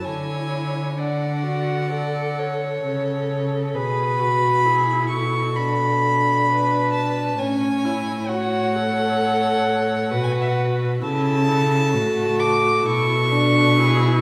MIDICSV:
0, 0, Header, 1, 5, 480
1, 0, Start_track
1, 0, Key_signature, 3, "minor"
1, 0, Tempo, 936037
1, 18, Time_signature, 4, 2, 24, 8
1, 1458, Tempo, 914634
1, 3378, Tempo, 902256
1, 5778, Tempo, 918836
1, 5779, Key_signature, 3, "major"
1, 7449, End_track
2, 0, Start_track
2, 0, Title_t, "Violin"
2, 0, Program_c, 0, 40
2, 24, Note_on_c, 0, 80, 84
2, 505, Note_on_c, 0, 78, 89
2, 512, Note_off_c, 0, 80, 0
2, 1697, Note_off_c, 0, 78, 0
2, 1935, Note_on_c, 0, 83, 104
2, 2634, Note_off_c, 0, 83, 0
2, 2642, Note_on_c, 0, 85, 93
2, 2883, Note_on_c, 0, 83, 99
2, 2891, Note_off_c, 0, 85, 0
2, 3604, Note_off_c, 0, 83, 0
2, 3607, Note_on_c, 0, 81, 89
2, 3848, Note_on_c, 0, 80, 99
2, 3856, Note_off_c, 0, 81, 0
2, 4320, Note_on_c, 0, 78, 108
2, 4328, Note_off_c, 0, 80, 0
2, 5367, Note_on_c, 0, 80, 73
2, 5375, Note_off_c, 0, 78, 0
2, 5409, Note_on_c, 0, 78, 76
2, 5417, Note_off_c, 0, 80, 0
2, 5461, Note_on_c, 0, 76, 81
2, 5469, Note_off_c, 0, 78, 0
2, 5495, Note_on_c, 0, 78, 77
2, 5503, Note_off_c, 0, 76, 0
2, 5538, Note_off_c, 0, 78, 0
2, 5787, Note_on_c, 0, 81, 125
2, 6500, Note_on_c, 0, 86, 105
2, 6508, Note_off_c, 0, 81, 0
2, 6743, Note_on_c, 0, 85, 118
2, 6751, Note_off_c, 0, 86, 0
2, 7449, Note_off_c, 0, 85, 0
2, 7449, End_track
3, 0, Start_track
3, 0, Title_t, "Violin"
3, 0, Program_c, 1, 40
3, 22, Note_on_c, 1, 73, 62
3, 502, Note_on_c, 1, 74, 57
3, 510, Note_off_c, 1, 73, 0
3, 973, Note_off_c, 1, 74, 0
3, 976, Note_on_c, 1, 74, 66
3, 1223, Note_on_c, 1, 73, 64
3, 1231, Note_off_c, 1, 74, 0
3, 1933, Note_on_c, 1, 71, 61
3, 1941, Note_off_c, 1, 73, 0
3, 2411, Note_on_c, 1, 68, 65
3, 2419, Note_off_c, 1, 71, 0
3, 2645, Note_on_c, 1, 69, 63
3, 2653, Note_off_c, 1, 68, 0
3, 3373, Note_off_c, 1, 69, 0
3, 3375, Note_on_c, 1, 71, 74
3, 3848, Note_off_c, 1, 71, 0
3, 3854, Note_on_c, 1, 73, 68
3, 4321, Note_off_c, 1, 73, 0
3, 4329, Note_on_c, 1, 73, 74
3, 5278, Note_off_c, 1, 73, 0
3, 5303, Note_on_c, 1, 71, 82
3, 5780, Note_on_c, 1, 69, 81
3, 5787, Note_off_c, 1, 71, 0
3, 7219, Note_off_c, 1, 69, 0
3, 7222, Note_on_c, 1, 68, 99
3, 7449, Note_off_c, 1, 68, 0
3, 7449, End_track
4, 0, Start_track
4, 0, Title_t, "Viola"
4, 0, Program_c, 2, 41
4, 14, Note_on_c, 2, 64, 64
4, 489, Note_off_c, 2, 64, 0
4, 495, Note_on_c, 2, 62, 60
4, 734, Note_on_c, 2, 66, 66
4, 741, Note_off_c, 2, 62, 0
4, 973, Note_on_c, 2, 69, 65
4, 981, Note_off_c, 2, 66, 0
4, 1454, Note_off_c, 2, 69, 0
4, 1458, Note_on_c, 2, 69, 66
4, 1932, Note_on_c, 2, 68, 69
4, 1939, Note_off_c, 2, 69, 0
4, 2165, Note_on_c, 2, 66, 67
4, 2173, Note_off_c, 2, 68, 0
4, 2408, Note_on_c, 2, 64, 68
4, 2416, Note_off_c, 2, 66, 0
4, 2888, Note_on_c, 2, 62, 68
4, 2896, Note_off_c, 2, 64, 0
4, 3852, Note_off_c, 2, 62, 0
4, 3855, Note_on_c, 2, 61, 80
4, 4094, Note_on_c, 2, 64, 73
4, 4102, Note_off_c, 2, 61, 0
4, 4329, Note_on_c, 2, 66, 78
4, 4337, Note_off_c, 2, 64, 0
4, 4579, Note_on_c, 2, 69, 82
4, 4587, Note_off_c, 2, 66, 0
4, 5296, Note_on_c, 2, 66, 75
4, 5304, Note_off_c, 2, 69, 0
4, 5777, Note_off_c, 2, 66, 0
4, 5781, Note_on_c, 2, 64, 81
4, 6012, Note_off_c, 2, 64, 0
4, 6016, Note_on_c, 2, 64, 79
4, 6255, Note_on_c, 2, 66, 79
4, 6263, Note_off_c, 2, 64, 0
4, 6738, Note_off_c, 2, 66, 0
4, 6742, Note_on_c, 2, 64, 82
4, 6978, Note_off_c, 2, 64, 0
4, 6988, Note_on_c, 2, 62, 95
4, 7228, Note_on_c, 2, 64, 91
4, 7236, Note_off_c, 2, 62, 0
4, 7449, Note_off_c, 2, 64, 0
4, 7449, End_track
5, 0, Start_track
5, 0, Title_t, "Cello"
5, 0, Program_c, 3, 42
5, 23, Note_on_c, 3, 50, 65
5, 1452, Note_off_c, 3, 50, 0
5, 1455, Note_on_c, 3, 49, 60
5, 1930, Note_on_c, 3, 47, 73
5, 1937, Note_off_c, 3, 49, 0
5, 3852, Note_off_c, 3, 47, 0
5, 3855, Note_on_c, 3, 45, 75
5, 5299, Note_on_c, 3, 47, 78
5, 5307, Note_off_c, 3, 45, 0
5, 5780, Note_on_c, 3, 49, 87
5, 5788, Note_off_c, 3, 47, 0
5, 6261, Note_on_c, 3, 45, 79
5, 6269, Note_off_c, 3, 49, 0
5, 6741, Note_off_c, 3, 45, 0
5, 6744, Note_on_c, 3, 47, 96
5, 7449, Note_off_c, 3, 47, 0
5, 7449, End_track
0, 0, End_of_file